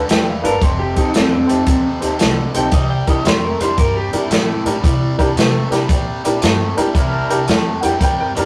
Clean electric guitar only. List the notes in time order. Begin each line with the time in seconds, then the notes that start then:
0.11 G5
0.30 F5
0.45 A#4
0.63 C5
0.79 G4
0.98 D#4
1.16 C4
1.32 C4
2.56 G5
2.73 D#5
2.90 G5
3.10 D#5
3.27 C5
3.44 A#4
3.62 C5
3.79 A#4
3.97 G4
4.15 E4